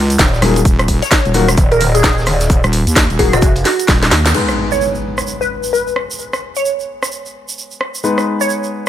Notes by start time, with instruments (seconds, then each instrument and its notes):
Already playing: wobble bass C#2
0.10 closed hi-hat, shaker
0.19 wobble bass D#1, kick, snare, closed hi-hat, shaker
0.33 snare, shaker
0.42 wobble bass D#1, grand piano D#3 F#3 A#3 G#4, cross-stick, snare, open hi-hat, shaker
0.56 closed hi-hat, shaker
0.65 wobble bass D#1, kick, closed hi-hat, shaker
0.79 cross-stick, closed hi-hat, shaker
0.88 kick, open hi-hat, shaker
1.02 synth pluck C#5, snare, closed hi-hat, shaker
1.11 kick, snare, closed hi-hat, shaker
1.25 wobble bass D#1, closed hi-hat, shaker
1.34 grand piano D#3 F#3 A#3 F#4, open hi-hat, shaker
1.48 cross-stick, closed hi-hat, shaker
1.57 wobble bass D#1, kick, closed hi-hat, shaker
1.72 synth pluck A#4, closed hi-hat, shaker
1.81 open hi-hat, shaker
1.95 synth pluck G#4, closed hi-hat, shaker
2.04 wobble bass D#1, synth pluck G#4, kick, snare, closed hi-hat, shaker
2.18 snare, shaker
2.26 wobble bass D#1, cross-stick, snare, open hi-hat, shaker
2.41 snare, closed hi-hat, shaker
2.50 kick, closed hi-hat, shaker
2.64 wobble bass D#1, cross-stick, closed hi-hat, shaker
2.73 open hi-hat, shaker
2.87 wobble bass D#2, closed hi-hat, shaker
2.96 kick, snare, closed hi-hat, shaker
3.10 wobble bass D#1, closed hi-hat, shaker
3.19 grand piano D#3 F#3 A#3 F#4, synth pluck G#4, kick, open hi-hat, shaker
3.33 wobble bass D#1, synth pluck F#4, cross-stick, closed hi-hat, shaker
3.42 wobble bass F1, kick, closed hi-hat, shaker
3.56 closed hi-hat, shaker
3.65 synth pluck F#4, snare, open hi-hat, shaker
3.80 closed hi-hat, shaker
3.88 wobble bass D#1, kick, snare, open hi-hat, shaker
4.03 snare, closed hi-hat, shaker
4.11 wobble bass D#2, snare, open hi-hat, shaker
4.26 snare, closed hi-hat, shaker
4.35 grand piano G#3 B3 D#4 B4, crash, impact, shaker
4.49 cross-stick, shaker
4.72 synth pluck C#5, shaker
4.81 shaker
4.95 shaker
5.18 cross-stick, shaker
5.27 shaker
5.41 synth pluck B4, shaker
5.63 shaker
5.73 synth pluck B4, shaker
5.87 shaker
5.96 cross-stick
6.11 shaker
6.19 shaker
6.33 cross-stick, shaker
6.56 synth pluck C#5, shaker
6.65 shaker
6.80 shaker
7.03 cross-stick, shaker
7.12 shaker
7.26 shaker
7.49 shaker
7.58 shaker
7.71 shaker
7.81 cross-stick
7.95 shaker
8.04 grand piano G#3 B3 D#4 B4, shaker
8.18 cross-stick, shaker
8.41 synth pluck C#5, shaker
8.49 shaker
8.64 shaker